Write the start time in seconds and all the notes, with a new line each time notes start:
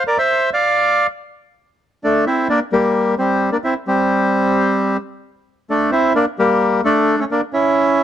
0.07 A#4 D5
0.18 C5 E5
0.53 D5 F5
2.04 A3 D4
2.27 C4 E4
2.49 A#3 D4
2.72 G3 A#3
3.18 G3 C4
3.52 A#3 D4
3.64 C4 E4
3.87 G3 C4
5.70 A3 D4
5.91 C4 E4
6.15 A#3 D4
6.39 G3 A#3
6.84 A3 D4
7.19 A3 C#4
7.31 A#3 D4
7.53 C#4 E4